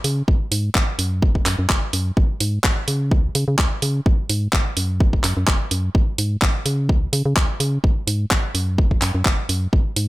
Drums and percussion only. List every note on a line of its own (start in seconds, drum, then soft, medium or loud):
0.04 open hi-hat medium
0.28 kick loud
0.52 open hi-hat loud
0.75 kick loud
0.75 clap loud
0.99 open hi-hat medium
1.22 kick loud
1.35 kick medium
1.46 clap medium
1.46 open hi-hat loud
1.69 kick loud
1.69 clap loud
1.93 open hi-hat medium
2.17 kick loud
2.40 open hi-hat loud
2.64 kick loud
2.64 clap loud
2.88 open hi-hat medium
3.11 kick loud
3.35 open hi-hat loud
3.58 kick loud
3.58 clap loud
3.82 open hi-hat loud
4.06 kick loud
4.29 open hi-hat loud
4.53 kick loud
4.53 clap loud
4.77 open hi-hat medium
5.00 kick loud
5.13 kick medium
5.24 clap medium
5.24 open hi-hat loud
5.47 kick loud
5.47 clap loud
5.71 open hi-hat medium
5.95 kick loud
6.18 open hi-hat loud
6.42 kick loud
6.42 clap loud
6.66 open hi-hat medium
6.89 kick loud
7.13 open hi-hat loud
7.36 kick loud
7.36 clap loud
7.60 open hi-hat medium
7.84 kick loud
8.08 open hi-hat loud
8.31 kick loud
8.31 clap loud
8.55 open hi-hat medium
8.78 kick loud
8.91 kick medium
9.02 clap medium
9.02 open hi-hat loud
9.25 kick loud
9.25 clap loud
9.49 open hi-hat medium
9.73 kick loud
9.96 open hi-hat loud